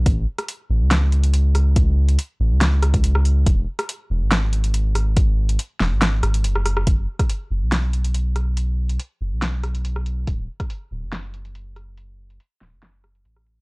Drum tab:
HH |x--xx---x-xxx-o-|x--xx---x-xxx-o-|x--xx---x-xxx-o-|x--xx---x-xxx-o-|
SD |---r----o-----r-|--------o-r--r--|---r----o-----r-|------o-o-r--rrr|
BD |o---------------|o----------o----|o---------------|o---------------|

HH |x--xx---x-xxx-x-|x--xx---x-xxx-x-|x--xx---x-xxx-x-|x--xx---x-xxx-x-|
SD |---r----o-----r-|--------o-r--r--|---r----o-----r-|------o-o-r--r--|
BD |o--o------------|----------------|o--o------------|----------------|